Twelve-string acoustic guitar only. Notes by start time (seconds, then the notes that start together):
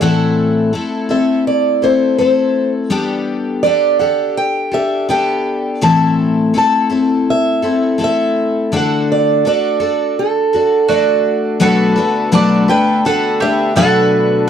0.01 A2 E3 A3 C4 E4 A4
0.73 A3 C4 E4 A4
1.09 A3 C4 E4 A4
1.82 A3 C4 E4 A4
2.19 A3 C4 E4 A4
2.90 G3 B3 D4 G4 A4
3.64 B3 D4 G4 A4
4.00 D4 G4 A4
4.72 D4 G4 A4
5.09 B3 D4 G4 A4
5.81 A2 E3 A3 C4 E4 A4
6.54 A3 C4 E4 A4
6.90 A3 C4 E4 A4
7.62 A3 C4 E4 A4
7.98 A3 C4 E4 A4
8.72 D3 A3 D4 F#4 A4
9.45 A3 D4 F#4 A4
9.80 D4 F#4 A4
10.53 D4 F#4 A4
10.89 A3 D4 F#4 A4
11.60 B2 F#3 A3 D4 F#4 B4
11.96 A3 D4 F#4 B4
12.32 B2 F#3 A3 D4 F#4 B4
12.68 A3 D4 B4
13.05 A3 D4 F#4 B4
13.41 A3 D4 B4
13.76 B2 F#3 A3 D4 F#4 B4